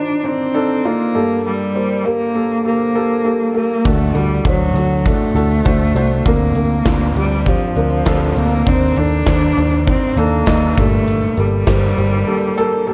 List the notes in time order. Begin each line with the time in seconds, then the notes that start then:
Already playing: D#3 D4 D#4 F4 C5
0.19 D4
0.23 C4 D4 D#4 C5
0.54 D4 D#4 A4
0.85 A#3 D4 D#4 F4
1.14 G2 A3 G4 A4
1.21 A#3
1.46 G3
1.75 A#3 G4 C5
2.05 A#3 G4 A#4
2.35 A#3 G4 A4
2.65 A#3 G4 A4
2.95 A#3 G4 A4
3.25 A#3 G4 A4
3.54 A#3 G4 A#4
3.85 D2 D3 A3 D4 F#4 A4, kick, closed hi-hat
4.15 D2 G3 D4 F#4 A4, closed hi-hat
4.45 D2 F#3 D4 F#4 C5, kick, closed hi-hat
4.74 D2 D4 F#4 A4, closed hi-hat
5.06 A3 D4 F#4 A4, kick, closed hi-hat
5.35 D2 D4 F#4 A4, closed hi-hat
5.65 D2 D4 F#4 C5, kick, closed hi-hat
5.95 C2 D4 F#4 C5, closed hi-hat
6.26 D2 D3 A#3 C4 D4 A#4, kick, closed hi-hat
6.55 D2 C4 D4 A#4, closed hi-hat
6.86 D2 C4 D4 F4, kick, snare, clap, closed hi-hat
7.16 D2 G3 C4 D4 G4, closed hi-hat
7.46 F3 C4 D4 G4, kick, closed hi-hat
7.76 D2 C4 D4 A#4, closed hi-hat
8.05 D2 C4 D4 A4, kick, snare, clap, closed hi-hat
8.36 D2 A#3 C4 D4 C5, closed hi-hat
8.66 D#2 D#3 C4 D4 D#4 C5, kick, closed hi-hat
8.96 D#2 D4 D#4 A4, closed hi-hat
9.26 D#2 D4 D#4 C5, kick, snare, clap, closed hi-hat
9.57 D#2 D4 D#4 C5, closed hi-hat
9.87 C4 D4 D#4 C5, kick, closed hi-hat
10.17 D#2 A#3 D4 D#4 A4, closed hi-hat
10.46 D#2 D4 D#4 D#5, kick, snare, clap, closed hi-hat
10.77 G1 G2 A#2 A3 G4 A4, kick, snare, closed hi-hat
11.07 closed hi-hat
11.37 G1 G3 A#3 G4 A4, closed hi-hat
11.67 G1 A#3 G4 C5, kick, snare, clap, closed hi-hat
11.97 G1 A#3 G4 C5, closed hi-hat
12.27 A#3 G4 A4
12.57 A#3 G4 A4
12.87 A#3 G4 A4